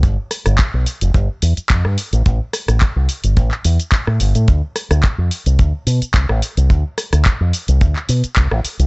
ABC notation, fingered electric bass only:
X:1
M:4/4
L:1/16
Q:"Swing 16ths" 1/4=108
K:Ddor
V:1 name="Fingered electric bass" clef=bass
z3 G,,, z B,,, z F,,, G,,, z E,, z F,, G,, z A,,, | A,,, z2 A,,, z C,, z G,,, A,,, z E,, z2 A,, G,,, A,, | D,, z2 D,, z F,, z C,, D,, z B,, z C,, A,,, z C,, | D,, z2 D,, z F,, z C,, z2 B,, z C,, A,,, z C,, |]